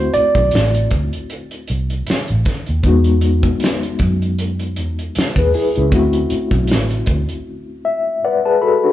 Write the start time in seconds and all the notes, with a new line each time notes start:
Already playing: A3 C4 E4 F#4 C5
0.14 D5, muted fingered electric bass stroke, closed hi-hat
0.35 B1, kick, closed hi-hat
0.51 A1, closed hi-hat
0.55 snare
0.74 closed hi-hat
0.91 D2, kick, closed hi-hat
1.13 closed hi-hat
1.30 closed hi-hat
1.51 closed hi-hat
1.67 C2, closed hi-hat
1.90 closed hi-hat
2.07 muted fingered electric bass stroke, snare, closed hi-hat
2.28 A1, closed hi-hat
2.45 kick, snare, closed hi-hat
2.67 D#2, closed hi-hat
2.83 E2 F#3 B3 D#4, kick, closed hi-hat
2.87 G#3 F#4
3.04 closed hi-hat
3.21 closed hi-hat
3.43 kick, closed hi-hat
3.60 closed hi-hat
3.64 snare
3.83 closed hi-hat
3.99 F#2, kick, closed hi-hat
4.22 closed hi-hat
4.39 closed hi-hat
4.59 closed hi-hat
4.76 E2, closed hi-hat
4.99 closed hi-hat
5.15 muted fingered electric bass stroke, snare, closed hi-hat
5.36 D#2 G#4 B4, kick, closed hi-hat
5.54 E4 G#4, open hi-hat
5.75 C#2 C#4 E4, closed hi-hat
5.90 D2 A3 C4 E4, kick, closed hi-hat
5.95 F#4
6.13 closed hi-hat
6.30 muted fingered electric bass stroke, closed hi-hat
6.51 B1, kick, closed hi-hat
6.67 A1, closed hi-hat
6.71 snare
6.90 closed hi-hat
7.06 D2, kick, closed hi-hat
7.29 closed hi-hat
7.85 E5
8.24 B4 D5 F#5
8.45 G#4 B4 A5
8.62 F#4 A4 B5
8.84 D4 F#4